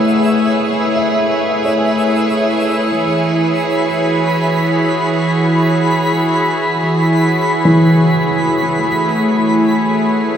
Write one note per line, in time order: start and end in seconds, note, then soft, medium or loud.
0.00 3.04 A3 medium
0.00 0.28 E4 medium
0.00 10.37 E4 medium
0.00 10.37 G#4 medium
0.00 5.38 B4 medium
0.00 10.37 C#5 medium
0.00 1.86 D#5 soft
0.00 3.05 E5 medium
0.00 1.15 F#5 medium
0.00 3.04 G#5 medium
0.96 3.85 E5 soft
1.65 4.54 C#5 soft
3.00 8.87 E3 medium
3.00 10.37 B5 medium
3.51 10.37 F#4 medium
7.65 10.37 E3 medium
8.90 10.37 A3 medium
10.05 10.37 B4 medium